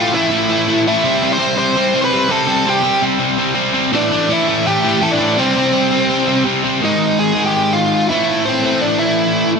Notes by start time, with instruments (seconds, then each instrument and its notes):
Already playing: distorted electric guitar A2 E3 A3, lead electric guitar F4
0.00 lead electric guitar F5
0.13 distorted electric guitar A2 E3 A3, lead electric guitar E4 E5
0.30 distorted electric guitar A2 E3 A3
0.49 distorted electric guitar A2 E3 A3
0.68 distorted electric guitar A2 E3 A3
0.87 distorted electric guitar A2 E3 A3, lead electric guitar E4 E5
1.04 distorted electric guitar C3 G3 C4
1.23 distorted electric guitar C3 G3 C4
1.32 lead electric guitar C5 C6
1.39 distorted electric guitar C3 G3 C4
1.57 distorted electric guitar C3 G3 C4, lead electric guitar C5 C6
1.75 distorted electric guitar C3 G3 C4
1.94 distorted electric guitar C3 G3 C4
2.04 lead electric guitar B4 B5
2.12 distorted electric guitar C3 G3 C4
2.28 distorted electric guitar C3 G3 C4, lead electric guitar A4 A5
2.47 distorted electric guitar C3 G3 C4
2.66 distorted electric guitar C3 G3 C4, lead electric guitar G4 G5
2.83 distorted electric guitar C3 G3 C4
3.02 distorted electric guitar C3 G3 C4
3.19 distorted electric guitar C3 G3 C4
3.38 distorted electric guitar C3 G3 C4
3.55 distorted electric guitar C3 G3 C4
3.74 distorted electric guitar C3 G3 C4
3.92 distorted electric guitar A2 E3 A3, lead electric guitar D4 D5
4.11 distorted electric guitar A2 E3 A3
4.29 distorted electric guitar A2 E3 A3, lead electric guitar E4
4.33 lead electric guitar E5
4.48 distorted electric guitar A2 E3 A3
4.66 distorted electric guitar A2 E3 A3, lead electric guitar G4 G5
4.84 distorted electric guitar A2 E3 A3
5.01 distorted electric guitar A2 E3 A3, lead electric guitar A4 A5
5.11 lead electric guitar D4 D5
5.19 distorted electric guitar A2 E3 A3
5.37 distorted electric guitar C3 G3 C4, lead electric guitar C4 C5
5.56 distorted electric guitar C3 G3 C4
5.72 distorted electric guitar C3 G3 C4
5.91 distorted electric guitar C3 G3 C4
6.09 distorted electric guitar C3 G3 C4
6.27 distorted electric guitar C3 G3 C4
6.45 distorted electric guitar C3 G3 C4
6.64 distorted electric guitar C3 G3 C4
6.80 distorted electric guitar G#2 D#3 G#3
6.84 lead electric guitar D#4 D#5
7.19 lead electric guitar G#4 G#5
7.35 distorted electric guitar G#2 D#3 G#3
7.46 lead electric guitar G4 G5
7.73 lead electric guitar F4 F5
8.09 distorted electric guitar A2 E3 A3, lead electric guitar E4 E5
8.45 lead electric guitar C4 C5
8.63 distorted electric guitar A2 E3 A3
8.82 lead electric guitar D4 D5
8.99 lead electric guitar E4 E5